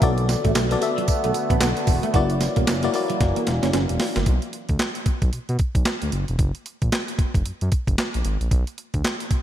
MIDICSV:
0, 0, Header, 1, 7, 480
1, 0, Start_track
1, 0, Tempo, 530973
1, 14, Time_signature, 4, 2, 24, 8
1, 8519, End_track
2, 0, Start_track
2, 0, Title_t, "FM electric piano"
2, 0, Program_c, 0, 5
2, 0, Control_c, 0, 64, 127
2, 21, Note_on_c, 0, 59, 89
2, 23, Note_on_c, 0, 66, 88
2, 27, Note_on_c, 0, 69, 84
2, 28, Control_c, 0, 64, 0
2, 30, Note_on_c, 0, 74, 101
2, 199, Control_c, 0, 64, 127
2, 426, Note_off_c, 0, 59, 0
2, 427, Note_off_c, 0, 66, 0
2, 429, Note_off_c, 0, 69, 0
2, 430, Note_off_c, 0, 74, 0
2, 642, Note_on_c, 0, 59, 88
2, 646, Note_on_c, 0, 66, 81
2, 648, Note_on_c, 0, 69, 77
2, 654, Note_on_c, 0, 74, 104
2, 703, Note_off_c, 0, 59, 0
2, 705, Note_off_c, 0, 66, 0
2, 706, Note_off_c, 0, 69, 0
2, 709, Note_off_c, 0, 74, 0
2, 735, Note_on_c, 0, 59, 90
2, 738, Note_on_c, 0, 66, 78
2, 744, Note_on_c, 0, 69, 83
2, 747, Note_on_c, 0, 76, 94
2, 1378, Note_off_c, 0, 59, 0
2, 1380, Note_off_c, 0, 66, 0
2, 1382, Note_off_c, 0, 69, 0
2, 1384, Note_off_c, 0, 76, 0
2, 1942, Note_on_c, 0, 58, 86
2, 1945, Note_on_c, 0, 64, 83
2, 1947, Control_c, 0, 64, 0
2, 1948, Note_on_c, 0, 66, 81
2, 1952, Note_on_c, 0, 74, 95
2, 2130, Control_c, 0, 64, 127
2, 2346, Note_off_c, 0, 58, 0
2, 2348, Note_off_c, 0, 64, 0
2, 2349, Note_off_c, 0, 66, 0
2, 2351, Note_off_c, 0, 74, 0
2, 2562, Note_on_c, 0, 58, 87
2, 2564, Note_on_c, 0, 64, 80
2, 2569, Note_on_c, 0, 66, 78
2, 2571, Note_on_c, 0, 74, 100
2, 2623, Note_off_c, 0, 58, 0
2, 2624, Note_off_c, 0, 64, 0
2, 2626, Note_off_c, 0, 66, 0
2, 2627, Note_off_c, 0, 74, 0
2, 2658, Note_on_c, 0, 58, 86
2, 2665, Note_on_c, 0, 64, 82
2, 2667, Note_on_c, 0, 66, 79
2, 2671, Note_on_c, 0, 74, 99
2, 3300, Note_off_c, 0, 58, 0
2, 3303, Note_off_c, 0, 64, 0
2, 3304, Note_off_c, 0, 66, 0
2, 3306, Note_off_c, 0, 74, 0
2, 3867, Control_c, 0, 64, 0
2, 8519, End_track
3, 0, Start_track
3, 0, Title_t, "Clean electric guitar"
3, 0, Program_c, 1, 27
3, 17, Note_on_c, 1, 59, 76
3, 96, Note_off_c, 1, 59, 0
3, 401, Note_on_c, 1, 57, 69
3, 453, Note_off_c, 1, 57, 0
3, 499, Note_on_c, 1, 57, 82
3, 578, Note_off_c, 1, 57, 0
3, 884, Note_on_c, 1, 54, 80
3, 935, Note_off_c, 1, 54, 0
3, 1123, Note_on_c, 1, 57, 69
3, 1175, Note_off_c, 1, 57, 0
3, 1361, Note_on_c, 1, 59, 81
3, 1413, Note_off_c, 1, 59, 0
3, 1455, Note_on_c, 1, 59, 87
3, 1535, Note_off_c, 1, 59, 0
3, 1838, Note_on_c, 1, 57, 80
3, 1891, Note_off_c, 1, 57, 0
3, 1932, Note_on_c, 1, 66, 72
3, 2013, Note_off_c, 1, 66, 0
3, 2316, Note_on_c, 1, 58, 73
3, 2370, Note_off_c, 1, 58, 0
3, 2414, Note_on_c, 1, 58, 80
3, 2494, Note_off_c, 1, 58, 0
3, 2799, Note_on_c, 1, 54, 75
3, 2852, Note_off_c, 1, 54, 0
3, 3042, Note_on_c, 1, 58, 77
3, 3095, Note_off_c, 1, 58, 0
3, 3279, Note_on_c, 1, 61, 86
3, 3332, Note_off_c, 1, 61, 0
3, 3376, Note_on_c, 1, 61, 86
3, 3455, Note_off_c, 1, 61, 0
3, 3760, Note_on_c, 1, 58, 81
3, 3813, Note_off_c, 1, 58, 0
3, 8519, End_track
4, 0, Start_track
4, 0, Title_t, "Analog synth pad"
4, 0, Program_c, 2, 89
4, 15, Note_on_c, 2, 50, 88
4, 17, Note_on_c, 2, 57, 75
4, 17, Note_on_c, 2, 59, 94
4, 1916, Note_off_c, 2, 50, 0
4, 1916, Note_off_c, 2, 57, 0
4, 1917, Note_off_c, 2, 59, 0
4, 1938, Note_on_c, 2, 54, 72
4, 1938, Note_on_c, 2, 58, 97
4, 1939, Note_on_c, 2, 52, 77
4, 3837, Note_off_c, 2, 54, 0
4, 3837, Note_off_c, 2, 58, 0
4, 3838, Note_off_c, 2, 52, 0
4, 8519, End_track
5, 0, Start_track
5, 0, Title_t, "Analog synth bass"
5, 0, Program_c, 3, 38
5, 16, Note_on_c, 3, 35, 120
5, 320, Note_off_c, 3, 35, 0
5, 405, Note_on_c, 3, 33, 97
5, 479, Note_off_c, 3, 33, 0
5, 498, Note_on_c, 3, 35, 95
5, 687, Note_off_c, 3, 35, 0
5, 1124, Note_on_c, 3, 35, 93
5, 1198, Note_off_c, 3, 35, 0
5, 1358, Note_on_c, 3, 33, 92
5, 1434, Note_off_c, 3, 33, 0
5, 1456, Note_on_c, 3, 35, 107
5, 1570, Note_off_c, 3, 35, 0
5, 1696, Note_on_c, 3, 28, 98
5, 1810, Note_off_c, 3, 28, 0
5, 1936, Note_on_c, 3, 30, 123
5, 2240, Note_off_c, 3, 30, 0
5, 2324, Note_on_c, 3, 28, 98
5, 2398, Note_off_c, 3, 28, 0
5, 2421, Note_on_c, 3, 30, 87
5, 2609, Note_off_c, 3, 30, 0
5, 2900, Note_on_c, 3, 30, 96
5, 3012, Note_off_c, 3, 30, 0
5, 3144, Note_on_c, 3, 28, 94
5, 3255, Note_off_c, 3, 28, 0
5, 3286, Note_on_c, 3, 30, 85
5, 3359, Note_off_c, 3, 30, 0
5, 3382, Note_on_c, 3, 30, 108
5, 3493, Note_off_c, 3, 30, 0
5, 3524, Note_on_c, 3, 28, 90
5, 3598, Note_off_c, 3, 28, 0
5, 3764, Note_on_c, 3, 30, 87
5, 3838, Note_off_c, 3, 30, 0
5, 3857, Note_on_c, 3, 35, 110
5, 3971, Note_off_c, 3, 35, 0
5, 4243, Note_on_c, 3, 38, 88
5, 4317, Note_off_c, 3, 38, 0
5, 4577, Note_on_c, 3, 35, 48
5, 4634, Note_off_c, 3, 35, 0
5, 4719, Note_on_c, 3, 35, 80
5, 4795, Note_off_c, 3, 35, 0
5, 4820, Note_on_c, 3, 47, 50
5, 4876, Note_off_c, 3, 47, 0
5, 4962, Note_on_c, 3, 47, 94
5, 5037, Note_off_c, 3, 47, 0
5, 5201, Note_on_c, 3, 35, 91
5, 5276, Note_off_c, 3, 35, 0
5, 5443, Note_on_c, 3, 38, 88
5, 5517, Note_off_c, 3, 38, 0
5, 5536, Note_on_c, 3, 30, 81
5, 5650, Note_off_c, 3, 30, 0
5, 5685, Note_on_c, 3, 28, 96
5, 5758, Note_off_c, 3, 28, 0
5, 5777, Note_on_c, 3, 30, 104
5, 5890, Note_off_c, 3, 30, 0
5, 6165, Note_on_c, 3, 34, 94
5, 6239, Note_off_c, 3, 34, 0
5, 6497, Note_on_c, 3, 30, 50
5, 6554, Note_off_c, 3, 30, 0
5, 6642, Note_on_c, 3, 30, 84
5, 6717, Note_off_c, 3, 30, 0
5, 6743, Note_on_c, 3, 42, 52
5, 6798, Note_off_c, 3, 42, 0
5, 6885, Note_on_c, 3, 42, 92
5, 6959, Note_off_c, 3, 42, 0
5, 7118, Note_on_c, 3, 30, 85
5, 7195, Note_off_c, 3, 30, 0
5, 7367, Note_on_c, 3, 34, 85
5, 7440, Note_off_c, 3, 34, 0
5, 7457, Note_on_c, 3, 32, 94
5, 7570, Note_off_c, 3, 32, 0
5, 7600, Note_on_c, 3, 34, 89
5, 7675, Note_off_c, 3, 34, 0
5, 7696, Note_on_c, 3, 35, 110
5, 7810, Note_off_c, 3, 35, 0
5, 8084, Note_on_c, 3, 38, 86
5, 8158, Note_off_c, 3, 38, 0
5, 8416, Note_on_c, 3, 35, 47
5, 8473, Note_off_c, 3, 35, 0
5, 8519, End_track
6, 0, Start_track
6, 0, Title_t, "Muted clean electric guitar strokes"
6, 260, Note_on_c, 9, 29, 47
6, 351, Note_off_c, 9, 29, 0
6, 642, Note_on_c, 9, 29, 46
6, 733, Note_off_c, 9, 29, 0
6, 1217, Note_on_c, 9, 29, 46
6, 1307, Note_off_c, 9, 29, 0
6, 1696, Note_on_c, 9, 29, 46
6, 1786, Note_off_c, 9, 29, 0
6, 2173, Note_on_c, 9, 29, 48
6, 2264, Note_off_c, 9, 29, 0
6, 2559, Note_on_c, 9, 29, 48
6, 2650, Note_off_c, 9, 29, 0
6, 3136, Note_on_c, 9, 29, 45
6, 3227, Note_off_c, 9, 29, 0
6, 3615, Note_on_c, 9, 29, 45
6, 3705, Note_off_c, 9, 29, 0
6, 8519, End_track
7, 0, Start_track
7, 0, Title_t, "Drums"
7, 16, Note_on_c, 9, 36, 114
7, 16, Note_on_c, 9, 42, 72
7, 106, Note_off_c, 9, 36, 0
7, 106, Note_off_c, 9, 42, 0
7, 160, Note_on_c, 9, 42, 49
7, 250, Note_off_c, 9, 42, 0
7, 261, Note_on_c, 9, 42, 69
7, 262, Note_on_c, 9, 38, 68
7, 263, Note_on_c, 9, 54, 74
7, 352, Note_off_c, 9, 38, 0
7, 352, Note_off_c, 9, 42, 0
7, 354, Note_off_c, 9, 54, 0
7, 403, Note_on_c, 9, 42, 52
7, 404, Note_on_c, 9, 36, 74
7, 494, Note_off_c, 9, 36, 0
7, 494, Note_off_c, 9, 42, 0
7, 498, Note_on_c, 9, 42, 74
7, 500, Note_on_c, 9, 38, 123
7, 500, Note_on_c, 9, 54, 107
7, 509, Note_on_c, 9, 39, 99
7, 589, Note_off_c, 9, 42, 0
7, 590, Note_off_c, 9, 38, 0
7, 590, Note_off_c, 9, 54, 0
7, 599, Note_off_c, 9, 39, 0
7, 641, Note_on_c, 9, 42, 67
7, 732, Note_off_c, 9, 42, 0
7, 739, Note_on_c, 9, 42, 71
7, 740, Note_on_c, 9, 54, 64
7, 829, Note_off_c, 9, 42, 0
7, 830, Note_off_c, 9, 54, 0
7, 886, Note_on_c, 9, 42, 49
7, 974, Note_on_c, 9, 54, 84
7, 975, Note_off_c, 9, 42, 0
7, 975, Note_on_c, 9, 42, 70
7, 978, Note_on_c, 9, 36, 103
7, 1064, Note_off_c, 9, 54, 0
7, 1066, Note_off_c, 9, 42, 0
7, 1068, Note_off_c, 9, 36, 0
7, 1120, Note_on_c, 9, 42, 59
7, 1210, Note_off_c, 9, 42, 0
7, 1215, Note_on_c, 9, 42, 73
7, 1218, Note_on_c, 9, 54, 64
7, 1305, Note_off_c, 9, 42, 0
7, 1308, Note_off_c, 9, 54, 0
7, 1356, Note_on_c, 9, 36, 96
7, 1360, Note_on_c, 9, 42, 56
7, 1447, Note_off_c, 9, 36, 0
7, 1450, Note_off_c, 9, 42, 0
7, 1451, Note_on_c, 9, 38, 116
7, 1453, Note_on_c, 9, 42, 81
7, 1453, Note_on_c, 9, 54, 105
7, 1460, Note_on_c, 9, 39, 97
7, 1542, Note_off_c, 9, 38, 0
7, 1543, Note_off_c, 9, 42, 0
7, 1544, Note_off_c, 9, 54, 0
7, 1551, Note_off_c, 9, 39, 0
7, 1598, Note_on_c, 9, 42, 56
7, 1688, Note_off_c, 9, 42, 0
7, 1690, Note_on_c, 9, 46, 80
7, 1692, Note_on_c, 9, 54, 71
7, 1694, Note_on_c, 9, 36, 102
7, 1781, Note_off_c, 9, 46, 0
7, 1782, Note_off_c, 9, 54, 0
7, 1784, Note_off_c, 9, 36, 0
7, 1836, Note_on_c, 9, 42, 54
7, 1927, Note_off_c, 9, 42, 0
7, 1933, Note_on_c, 9, 42, 74
7, 1934, Note_on_c, 9, 36, 108
7, 2023, Note_off_c, 9, 42, 0
7, 2025, Note_off_c, 9, 36, 0
7, 2076, Note_on_c, 9, 42, 47
7, 2167, Note_off_c, 9, 42, 0
7, 2175, Note_on_c, 9, 42, 71
7, 2176, Note_on_c, 9, 38, 70
7, 2177, Note_on_c, 9, 54, 77
7, 2265, Note_off_c, 9, 42, 0
7, 2266, Note_off_c, 9, 38, 0
7, 2267, Note_off_c, 9, 54, 0
7, 2316, Note_on_c, 9, 42, 47
7, 2321, Note_on_c, 9, 36, 69
7, 2407, Note_off_c, 9, 42, 0
7, 2412, Note_off_c, 9, 36, 0
7, 2416, Note_on_c, 9, 42, 73
7, 2417, Note_on_c, 9, 38, 116
7, 2417, Note_on_c, 9, 54, 107
7, 2426, Note_on_c, 9, 39, 103
7, 2506, Note_off_c, 9, 42, 0
7, 2507, Note_off_c, 9, 38, 0
7, 2508, Note_off_c, 9, 54, 0
7, 2516, Note_off_c, 9, 39, 0
7, 2556, Note_on_c, 9, 42, 65
7, 2646, Note_off_c, 9, 42, 0
7, 2654, Note_on_c, 9, 46, 69
7, 2655, Note_on_c, 9, 54, 64
7, 2744, Note_off_c, 9, 46, 0
7, 2745, Note_off_c, 9, 54, 0
7, 2799, Note_on_c, 9, 42, 52
7, 2890, Note_off_c, 9, 42, 0
7, 2897, Note_on_c, 9, 36, 105
7, 2898, Note_on_c, 9, 38, 64
7, 2898, Note_on_c, 9, 42, 77
7, 2988, Note_off_c, 9, 36, 0
7, 2988, Note_off_c, 9, 42, 0
7, 2989, Note_off_c, 9, 38, 0
7, 3040, Note_on_c, 9, 42, 58
7, 3131, Note_off_c, 9, 42, 0
7, 3135, Note_on_c, 9, 42, 77
7, 3137, Note_on_c, 9, 38, 78
7, 3225, Note_off_c, 9, 42, 0
7, 3228, Note_off_c, 9, 38, 0
7, 3281, Note_on_c, 9, 38, 68
7, 3281, Note_on_c, 9, 42, 60
7, 3371, Note_off_c, 9, 38, 0
7, 3372, Note_off_c, 9, 42, 0
7, 3376, Note_on_c, 9, 38, 99
7, 3376, Note_on_c, 9, 42, 82
7, 3466, Note_off_c, 9, 42, 0
7, 3467, Note_off_c, 9, 38, 0
7, 3519, Note_on_c, 9, 42, 63
7, 3610, Note_off_c, 9, 42, 0
7, 3612, Note_on_c, 9, 46, 94
7, 3613, Note_on_c, 9, 38, 103
7, 3703, Note_off_c, 9, 38, 0
7, 3703, Note_off_c, 9, 46, 0
7, 3760, Note_on_c, 9, 38, 87
7, 3760, Note_on_c, 9, 42, 53
7, 3850, Note_off_c, 9, 38, 0
7, 3850, Note_off_c, 9, 42, 0
7, 3852, Note_on_c, 9, 42, 69
7, 3855, Note_on_c, 9, 36, 97
7, 3943, Note_off_c, 9, 42, 0
7, 3945, Note_off_c, 9, 36, 0
7, 3997, Note_on_c, 9, 42, 43
7, 4087, Note_off_c, 9, 42, 0
7, 4095, Note_on_c, 9, 42, 62
7, 4185, Note_off_c, 9, 42, 0
7, 4236, Note_on_c, 9, 42, 43
7, 4242, Note_on_c, 9, 36, 67
7, 4327, Note_off_c, 9, 42, 0
7, 4332, Note_off_c, 9, 36, 0
7, 4332, Note_on_c, 9, 42, 63
7, 4333, Note_on_c, 9, 38, 102
7, 4342, Note_on_c, 9, 39, 90
7, 4423, Note_off_c, 9, 42, 0
7, 4424, Note_off_c, 9, 38, 0
7, 4433, Note_off_c, 9, 39, 0
7, 4476, Note_on_c, 9, 42, 57
7, 4566, Note_off_c, 9, 42, 0
7, 4573, Note_on_c, 9, 42, 67
7, 4574, Note_on_c, 9, 36, 95
7, 4663, Note_off_c, 9, 42, 0
7, 4665, Note_off_c, 9, 36, 0
7, 4718, Note_on_c, 9, 36, 89
7, 4718, Note_on_c, 9, 42, 49
7, 4808, Note_off_c, 9, 36, 0
7, 4808, Note_off_c, 9, 42, 0
7, 4816, Note_on_c, 9, 42, 64
7, 4906, Note_off_c, 9, 42, 0
7, 4962, Note_on_c, 9, 42, 49
7, 5051, Note_off_c, 9, 42, 0
7, 5051, Note_on_c, 9, 42, 67
7, 5058, Note_on_c, 9, 36, 94
7, 5142, Note_off_c, 9, 42, 0
7, 5148, Note_off_c, 9, 36, 0
7, 5197, Note_on_c, 9, 36, 85
7, 5200, Note_on_c, 9, 42, 57
7, 5288, Note_off_c, 9, 36, 0
7, 5291, Note_off_c, 9, 42, 0
7, 5292, Note_on_c, 9, 38, 113
7, 5293, Note_on_c, 9, 42, 70
7, 5301, Note_on_c, 9, 39, 86
7, 5382, Note_off_c, 9, 38, 0
7, 5384, Note_off_c, 9, 42, 0
7, 5391, Note_off_c, 9, 39, 0
7, 5439, Note_on_c, 9, 42, 52
7, 5529, Note_off_c, 9, 42, 0
7, 5535, Note_on_c, 9, 42, 79
7, 5625, Note_off_c, 9, 42, 0
7, 5678, Note_on_c, 9, 42, 44
7, 5769, Note_off_c, 9, 42, 0
7, 5775, Note_on_c, 9, 42, 69
7, 5776, Note_on_c, 9, 36, 101
7, 5865, Note_off_c, 9, 42, 0
7, 5866, Note_off_c, 9, 36, 0
7, 5919, Note_on_c, 9, 42, 43
7, 6009, Note_off_c, 9, 42, 0
7, 6019, Note_on_c, 9, 42, 63
7, 6109, Note_off_c, 9, 42, 0
7, 6163, Note_on_c, 9, 42, 46
7, 6164, Note_on_c, 9, 36, 69
7, 6253, Note_off_c, 9, 42, 0
7, 6254, Note_off_c, 9, 36, 0
7, 6258, Note_on_c, 9, 42, 65
7, 6259, Note_on_c, 9, 38, 107
7, 6268, Note_on_c, 9, 39, 86
7, 6348, Note_off_c, 9, 42, 0
7, 6350, Note_off_c, 9, 38, 0
7, 6358, Note_off_c, 9, 39, 0
7, 6403, Note_on_c, 9, 42, 54
7, 6494, Note_off_c, 9, 42, 0
7, 6496, Note_on_c, 9, 36, 93
7, 6498, Note_on_c, 9, 42, 64
7, 6586, Note_off_c, 9, 36, 0
7, 6588, Note_off_c, 9, 42, 0
7, 6639, Note_on_c, 9, 36, 94
7, 6646, Note_on_c, 9, 42, 49
7, 6730, Note_off_c, 9, 36, 0
7, 6736, Note_off_c, 9, 42, 0
7, 6740, Note_on_c, 9, 42, 70
7, 6830, Note_off_c, 9, 42, 0
7, 6882, Note_on_c, 9, 42, 50
7, 6973, Note_off_c, 9, 42, 0
7, 6976, Note_on_c, 9, 42, 73
7, 6978, Note_on_c, 9, 36, 94
7, 7067, Note_off_c, 9, 42, 0
7, 7069, Note_off_c, 9, 36, 0
7, 7118, Note_on_c, 9, 36, 85
7, 7124, Note_on_c, 9, 42, 52
7, 7209, Note_off_c, 9, 36, 0
7, 7214, Note_off_c, 9, 42, 0
7, 7216, Note_on_c, 9, 38, 107
7, 7217, Note_on_c, 9, 42, 71
7, 7225, Note_on_c, 9, 39, 89
7, 7306, Note_off_c, 9, 38, 0
7, 7308, Note_off_c, 9, 42, 0
7, 7315, Note_off_c, 9, 39, 0
7, 7361, Note_on_c, 9, 42, 58
7, 7451, Note_off_c, 9, 42, 0
7, 7454, Note_on_c, 9, 42, 80
7, 7545, Note_off_c, 9, 42, 0
7, 7603, Note_on_c, 9, 42, 46
7, 7693, Note_off_c, 9, 42, 0
7, 7695, Note_on_c, 9, 36, 98
7, 7697, Note_on_c, 9, 42, 72
7, 7786, Note_off_c, 9, 36, 0
7, 7787, Note_off_c, 9, 42, 0
7, 7840, Note_on_c, 9, 42, 45
7, 7930, Note_off_c, 9, 42, 0
7, 7936, Note_on_c, 9, 42, 59
7, 8027, Note_off_c, 9, 42, 0
7, 8080, Note_on_c, 9, 42, 45
7, 8081, Note_on_c, 9, 36, 67
7, 8170, Note_off_c, 9, 42, 0
7, 8172, Note_off_c, 9, 36, 0
7, 8176, Note_on_c, 9, 42, 63
7, 8177, Note_on_c, 9, 38, 99
7, 8186, Note_on_c, 9, 39, 87
7, 8266, Note_off_c, 9, 42, 0
7, 8268, Note_off_c, 9, 38, 0
7, 8276, Note_off_c, 9, 39, 0
7, 8320, Note_on_c, 9, 42, 58
7, 8411, Note_off_c, 9, 42, 0
7, 8413, Note_on_c, 9, 36, 94
7, 8413, Note_on_c, 9, 42, 67
7, 8503, Note_off_c, 9, 42, 0
7, 8504, Note_off_c, 9, 36, 0
7, 8519, End_track
0, 0, End_of_file